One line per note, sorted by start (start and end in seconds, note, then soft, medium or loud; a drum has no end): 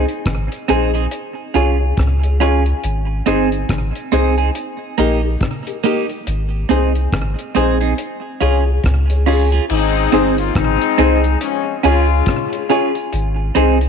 0.09 closed hi-hat soft
0.26 0.48 G#1 medium
0.26 kick loud
0.26 cross-stick loud
0.26 closed hi-hat medium
0.52 closed hi-hat medium
0.68 1.07 A#1 medium
0.68 0.90 C4 medium
0.68 0.84 D#4 medium
0.68 0.91 D#4 medium
0.68 0.85 G#4 medium
0.68 0.91 G#4 medium
0.68 0.85 C5 medium
0.68 closed hi-hat medium
0.94 1.06 C4 medium
0.94 1.06 D#4 medium
0.94 1.06 G#4 medium
0.94 closed hi-hat soft
1.11 closed hi-hat medium
1.54 1.93 C2 loud
1.54 1.76 C#4 medium
1.54 1.70 F4 medium
1.54 1.77 F4 loud
1.54 1.71 G#4 medium
1.54 1.77 G#4 medium
1.54 1.71 C#5 medium
1.54 closed hi-hat medium
1.80 1.87 G#4 soft
1.80 1.87 C#5 soft
1.97 2.73 C#2 medium
1.97 kick loud
1.97 cross-stick medium
1.97 closed hi-hat medium
2.24 2.30 G#4 soft
2.24 2.30 C#5 soft
2.24 closed hi-hat medium
2.40 2.62 C#4 medium
2.40 2.56 F4 medium
2.40 2.63 F4 medium
2.40 2.56 G#4 medium
2.40 2.63 G#4 loud
2.40 2.57 C#5 medium
2.40 cross-stick soft
2.40 closed hi-hat medium
2.66 closed hi-hat soft
2.84 3.21 G#1 loud
2.84 closed hi-hat medium
3.26 3.64 G1 medium
3.26 3.48 C4 medium
3.26 3.42 D#4 medium
3.26 3.48 D#4 medium
3.26 3.42 G#4 medium
3.26 3.49 G#4 medium
3.26 3.43 C5 loud
3.26 closed hi-hat medium
3.52 closed hi-hat soft
3.69 3.92 G#1 medium
3.69 kick loud
3.69 cross-stick loud
3.69 closed hi-hat medium
3.95 closed hi-hat medium
4.12 4.50 C2 medium
4.12 4.34 C4 medium
4.12 4.28 D#4 medium
4.12 4.34 D#4 medium
4.12 4.28 G#4 medium
4.12 4.35 G#4 medium
4.12 4.28 C5 loud
4.12 closed hi-hat medium
4.38 4.50 C4 soft
4.38 4.50 D#4 medium
4.38 4.49 G#4 medium
4.38 closed hi-hat soft
4.55 closed hi-hat medium
4.98 5.36 A#1 loud
4.98 5.20 A#3 medium
4.98 5.14 D#4 medium
4.98 5.20 D#4 loud
4.98 5.14 G4 medium
4.98 5.21 G4 medium
4.98 5.14 A#4 medium
4.98 closed hi-hat medium
5.24 5.31 G4 soft
5.24 5.31 A#4 soft
5.41 kick loud
5.41 cross-stick loud
5.41 closed hi-hat medium
5.67 5.74 G4 soft
5.67 5.74 A#4 soft
5.67 closed hi-hat medium
5.84 6.06 A#3 medium
5.84 6.00 D#4 medium
5.84 6.06 D#4 medium
5.84 6.00 G4 medium
5.84 6.06 G4 medium
5.84 6.00 A#4 medium
5.84 closed hi-hat medium
6.09 closed hi-hat soft
6.27 6.65 G#1 loud
6.27 closed hi-hat medium
6.69 7.07 C2 medium
6.69 6.91 C4 medium
6.69 6.85 D#4 medium
6.69 6.92 D#4 medium
6.69 6.86 G#4 medium
6.69 6.92 G#4 medium
6.69 6.86 C5 medium
6.69 closed hi-hat medium
6.95 closed hi-hat soft
7.12 7.35 G#1 loud
7.12 kick medium
7.12 cross-stick loud
7.12 closed hi-hat medium
7.39 closed hi-hat medium
7.55 7.93 A#1 loud
7.55 7.77 C4 medium
7.55 7.71 D#4 medium
7.55 7.77 D#4 medium
7.55 7.71 G#4 medium
7.55 7.78 G#4 medium
7.55 7.71 C5 loud
7.55 closed hi-hat medium
7.81 7.93 C4 soft
7.81 7.93 D#4 medium
7.81 7.92 G#4 medium
7.81 closed hi-hat soft
7.98 closed hi-hat medium
8.40 8.79 C2 medium
8.40 8.63 C#4 medium
8.40 8.57 F4 medium
8.40 8.63 F4 medium
8.40 8.57 G#4 medium
8.40 8.64 G#4 medium
8.40 8.57 C#5 medium
8.40 closed hi-hat medium
8.67 8.74 G#4 soft
8.67 8.74 C#5 soft
8.84 9.60 C#2 loud
8.84 kick loud
8.84 cross-stick loud
8.84 closed hi-hat medium
9.10 9.17 G#4 soft
9.10 9.17 C#5 soft
9.10 closed hi-hat medium
9.26 9.48 C#4 medium
9.26 9.42 F4 medium
9.26 9.49 F4 medium
9.26 9.43 G#4 medium
9.26 9.49 G#4 loud
9.26 9.43 C#5 medium
9.26 open hi-hat medium
9.52 9.65 C#4 medium
9.52 9.64 F4 medium
9.52 9.64 G#4 medium
9.52 closed hi-hat soft
9.70 10.08 G#1 loud
9.70 10.34 G#3 loud
9.70 10.34 C4 loud
9.70 10.34 D#4 loud
9.70 crash loud
10.12 10.51 G1 medium
10.12 10.34 C4 medium
10.12 10.28 D#4 medium
10.12 10.35 D#4 medium
10.12 10.28 G#4 medium
10.12 10.35 G#4 medium
10.12 10.29 C5 loud
10.12 closed hi-hat medium
10.38 10.52 A#3 medium
10.38 10.52 C#4 medium
10.38 10.52 F4 loud
10.38 closed hi-hat soft
10.55 10.78 G#1 loud
10.55 11.37 G#3 loud
10.55 11.38 C4 loud
10.55 11.37 D#4 loud
10.55 kick loud
10.55 cross-stick loud
10.55 closed hi-hat medium
10.82 closed hi-hat medium
10.98 11.36 C2 loud
10.98 11.20 C4 medium
10.98 11.14 D#4 loud
10.98 11.21 D#4 medium
10.98 11.14 G#4 medium
10.98 11.21 G#4 medium
10.98 11.14 C5 loud
10.98 closed hi-hat medium
11.24 closed hi-hat soft
11.41 11.76 F3 medium
11.41 11.76 G#3 medium
11.41 11.76 C#4 loud
11.41 closed hi-hat medium
11.83 12.22 C#2 loud
11.83 12.66 G#3 medium
11.83 12.06 C#4 medium
11.83 12.66 C#4 medium
11.83 12.00 F4 medium
11.83 12.66 F4 loud
11.83 12.06 F4 loud
11.83 12.00 G#4 medium
11.83 12.06 G#4 loud
11.83 12.00 C#5 medium
11.83 closed hi-hat medium
12.09 muted clean electric guitar stroke medium
12.26 kick loud
12.26 cross-stick loud
12.26 closed hi-hat medium
12.53 12.59 G#4 soft
12.53 12.59 C#5 soft
12.53 closed hi-hat medium
12.69 12.92 C#4 medium
12.69 12.85 F4 medium
12.69 12.92 F4 medium
12.69 12.85 G#4 medium
12.69 12.92 G#4 loud
12.69 12.86 C#5 loud
12.69 closed hi-hat medium
12.95 muted clean electric guitar stroke soft
12.95 closed hi-hat soft
13.13 13.50 G#1 loud
13.13 closed hi-hat medium
13.55 13.89 C2 medium
13.55 13.77 C4 medium
13.55 13.71 D#4 medium
13.55 13.78 D#4 medium
13.55 13.71 G#4 medium
13.55 13.78 G#4 medium
13.55 13.72 C5 medium
13.55 closed hi-hat medium
13.81 closed hi-hat soft